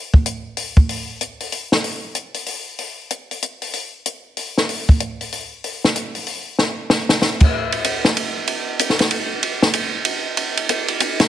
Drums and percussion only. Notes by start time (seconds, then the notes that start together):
0.14 kick
0.26 closed hi-hat
0.57 open hi-hat
0.77 kick
0.89 open hi-hat
1.21 closed hi-hat
1.40 open hi-hat
1.52 open hi-hat
1.72 snare
1.84 open hi-hat
2.15 closed hi-hat
2.34 open hi-hat
2.46 open hi-hat
2.79 open hi-hat
3.10 closed hi-hat
3.31 open hi-hat
3.42 closed hi-hat
3.62 open hi-hat
3.73 open hi-hat
4.06 closed hi-hat
4.37 open hi-hat
4.58 snare
4.69 open hi-hat
4.89 kick
5.00 closed hi-hat
5.21 open hi-hat
5.32 open hi-hat
5.64 open hi-hat
5.84 snare
5.96 closed hi-hat
6.15 open hi-hat
6.27 open hi-hat
6.59 snare
6.90 snare
7.09 snare
7.22 snare
7.40 kick, crash
7.72 ride
7.84 hi-hat pedal, ride
8.05 snare
8.17 ride
8.47 ride
8.79 hi-hat pedal, ride
8.90 snare
8.99 snare, ride
9.11 ride
9.43 ride
9.62 snare
9.73 hi-hat pedal, ride
10.05 ride
10.37 ride
10.57 ride
10.69 hi-hat pedal, ride
10.88 ride
11.00 hi-hat pedal, ride
11.20 snare, ride